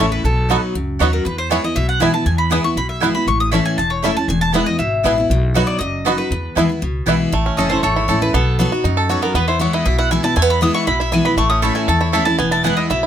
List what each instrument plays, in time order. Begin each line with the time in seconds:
Already playing: steel-string acoustic guitar E2
0.00 upright bass A1, steel-string acoustic guitar E3 A3 C#4 E4, five-string banjo C#4 E4
0.12 mandolin B4
0.24 upright bass B1, steel-string acoustic guitar B2, mandolin A4
0.49 steel-string acoustic guitar F#3 B3 D#4 F#4, mandolin B3 F#4 D#5 B5, five-string banjo B3 D#4 F#4
0.75 upright bass C#2, steel-string acoustic guitar F#2
0.99 upright bass D#2, steel-string acoustic guitar F#3 B3 D#4 F#4, mandolin B3 F#4 C#5 D#5 B5, five-string banjo B3 D#4 F#4
1.13 mandolin A#4
1.25 upright bass E2, steel-string acoustic guitar E2, mandolin B4
1.38 mandolin C5
1.49 steel-string acoustic guitar E3 G#3 B3 E4, mandolin B3 E4 B4 C#5 G#5, five-string banjo B3 E4
1.64 steel-string acoustic guitar B3 E4, mandolin D#5
1.76 upright bass B1, steel-string acoustic guitar B2, mandolin E5
1.89 mandolin F#5
2.00 steel-string acoustic guitar E3 G#3 B3 E4, mandolin B3 E4 B4 G#5, five-string banjo B3 E4
2.14 steel-string acoustic guitar B3 E4, mandolin A5
2.26 upright bass E2, steel-string acoustic guitar E2, mandolin G#5
2.38 mandolin B5
2.50 steel-string acoustic guitar E3 G#3 B3 E4, mandolin B3 E4 B4 G#5 D#6, five-string banjo B3 E4
2.64 steel-string acoustic guitar B3 E4, mandolin C#6
2.76 upright bass B1, steel-string acoustic guitar B2, mandolin B5
2.89 mandolin E5
3.00 steel-string acoustic guitar E3 G#3 B3 E4, mandolin B3 E4 B4 G#5, five-string banjo B3 E4
3.15 steel-string acoustic guitar B3 E4, mandolin B5
3.27 upright bass A1, steel-string acoustic guitar A2, mandolin C#6
3.40 mandolin D#6
3.51 steel-string acoustic guitar E3 A3 C#4 E4, mandolin A3 E4 C#5 A5 B5, five-string banjo A3 C#4 E4
3.65 mandolin G#5
3.78 upright bass E1, steel-string acoustic guitar E2, mandolin A5
3.90 mandolin C#5
4.02 steel-string acoustic guitar E3 A3 C#4, mandolin A3 E4 C#5 E5 A5, five-string banjo A3 C#4 E4
4.07 steel-string acoustic guitar E4
4.17 steel-string acoustic guitar C#4 E4, mandolin A5
4.28 upright bass E1, steel-string acoustic guitar E2, mandolin G#5
4.41 mandolin A5
4.52 steel-string acoustic guitar E3 G#3 B3 E4, mandolin B3 E4 B4 F#5 G#5, five-string banjo B3 E4
4.66 steel-string acoustic guitar B3 E4, mandolin D#5
4.79 upright bass G#1, steel-string acoustic guitar B2, mandolin E5
5.03 upright bass A1, steel-string acoustic guitar E3 G#3 B3 E4, mandolin B3 E4 B4 G#5, five-string banjo B3 E4
5.18 steel-string acoustic guitar B3 E4
5.30 upright bass B1, steel-string acoustic guitar B2
5.54 steel-string acoustic guitar F#3 B3 D#4 F#4, mandolin B3 F#4 D#5 B5, five-string banjo B3 D#4 F#4
5.67 mandolin D5
5.79 upright bass F#1, steel-string acoustic guitar F#2, mandolin D#5
6.05 steel-string acoustic guitar F#3 B3 D#4 F#4, mandolin B3 F#4 D#5 B5, five-string banjo B3 D#4 F#4
6.18 steel-string acoustic guitar D#4 F#4, mandolin B4
6.31 upright bass E2, steel-string acoustic guitar E2
6.55 upright bass D#2, steel-string acoustic guitar E3 G#3 B3 E4, mandolin B3 E4 B4 G#5, five-string banjo B3 E4
6.69 steel-string acoustic guitar B3 E4
6.82 upright bass C#2, steel-string acoustic guitar B2
7.06 upright bass B1, steel-string acoustic guitar E3 G#3 B3 E4, mandolin B3 E4 B4 G#5, five-string banjo B3 E4
7.32 upright bass A1, steel-string acoustic guitar A2, five-string banjo A3
7.46 five-string banjo C#4
7.57 upright bass F#1, steel-string acoustic guitar E3 A3 C#4 E4, five-string banjo A4, mandolin D#5
7.70 five-string banjo A3, steel-string acoustic guitar C#4 E4, mandolin C5
7.83 upright bass G#1, steel-string acoustic guitar E2, five-string banjo A4, mandolin C#5
7.96 five-string banjo E4
8.08 upright bass A1, steel-string acoustic guitar E3 A3 C#4 E4, five-string banjo A4
8.22 steel-string acoustic guitar C#4 E4, five-string banjo E4, mandolin B4
8.34 upright bass B1, steel-string acoustic guitar B2, five-string banjo B3, mandolin A4
8.59 steel-string acoustic guitar F#3 B3 D#4 F#4, five-string banjo B3
8.72 steel-string acoustic guitar D#4 F#4, five-string banjo F#4
8.84 upright bass F#2, steel-string acoustic guitar F#2, five-string banjo D#4
8.97 five-string banjo A4
9.09 steel-string acoustic guitar F#3 B3 D#4 F#4, five-string banjo F#4, mandolin C#5
9.22 five-string banjo B3, steel-string acoustic guitar D#4 F#4, mandolin A#4
9.34 upright bass E2, steel-string acoustic guitar E2, five-string banjo B3, mandolin B4
9.48 five-string banjo E4, mandolin C5
9.59 steel-string acoustic guitar E3 G#3 B3 E4, five-string banjo B3, mandolin C#5
9.73 five-string banjo E4, mandolin D#5
9.86 upright bass B1, steel-string acoustic guitar B2, five-string banjo E4, mandolin E5
9.98 five-string banjo E4, mandolin F#5
10.11 steel-string acoustic guitar E3 G#3 B3 E4, five-string banjo E4, mandolin G#5
10.23 steel-string acoustic guitar B3 E4, five-string banjo E4, mandolin A5
10.36 steel-string acoustic guitar E2, upright bass E2, five-string banjo A3, mandolin G#5
10.42 five-string banjo B3
10.50 mandolin B5
10.61 steel-string acoustic guitar E3 G#3 B3 E4, five-string banjo B3, mandolin D#6
10.74 five-string banjo E4, mandolin C#6
10.87 upright bass B1, steel-string acoustic guitar B2, five-string banjo E4, mandolin B5
11.00 five-string banjo E4, mandolin E5
11.12 steel-string acoustic guitar E3 G#3 B3 E4, five-string banjo E4, mandolin G#5
11.25 five-string banjo B3, steel-string acoustic guitar B3 E4, mandolin B5
11.37 upright bass A1, steel-string acoustic guitar A2, five-string banjo A3, mandolin C#6
11.50 five-string banjo C#4, mandolin D#6
11.62 steel-string acoustic guitar E3 A3 C#4 E4, mandolin A3 E4 C#5 A5 B5, five-string banjo A4
11.75 five-string banjo A3, mandolin G#5
11.88 upright bass E2, steel-string acoustic guitar E2, five-string banjo A4, mandolin A5
12.01 five-string banjo E4, mandolin C#5
12.12 steel-string acoustic guitar E3 A3 C#4 E4, mandolin A3 E4 C#5 E5 A5, five-string banjo A4
12.25 steel-string acoustic guitar C#4 E4, five-string banjo E4, mandolin A5
12.38 upright bass E1, steel-string acoustic guitar E2, five-string banjo B3, mandolin G#5
12.51 five-string banjo E4, mandolin A5
12.63 steel-string acoustic guitar E3 G#3 B3 E4, mandolin B3 E4 B4 F#5 G#5, five-string banjo B3
12.77 five-string banjo E4, mandolin D#5
12.90 upright bass B1, steel-string acoustic guitar B2, five-string banjo E4, mandolin E5
13.03 five-string banjo E4